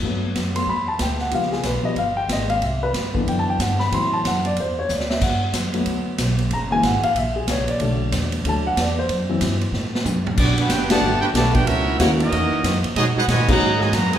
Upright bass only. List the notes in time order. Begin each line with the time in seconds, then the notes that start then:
0.02 G2
0.35 F#2
0.67 E2
1.00 D2
1.32 C#2
1.63 B1
1.83 muted upright bass stroke
1.95 G1
2.28 G#1
2.62 C2
2.93 G2
3.27 F#2
3.59 G2
3.92 A2
4.24 F#2
4.57 E2
4.89 D2
5.21 G2
5.53 F#2
5.86 D2
6.18 B1
6.51 F#1
6.82 G#1
7.03 muted upright bass stroke
7.14 A#1
7.47 C#2
7.58 A#1
7.69 F#1
7.80 B1
8.12 E2
8.45 D2
8.76 E2
9.09 F#2
9.41 G2
9.72 A2
10.05 F#2
10.37 B1
10.57 muted upright bass stroke
10.69 F#1
11.02 G1
11.21 muted upright bass stroke
11.33 B1
11.66 C#2
11.99 D#2
12.32 E2
12.51 muted upright bass stroke
12.63 F#2
12.84 muted upright bass stroke
12.95 B2
13.16 muted upright bass stroke
13.28 A#2
13.48 muted upright bass stroke
13.60 G#2
13.92 F#2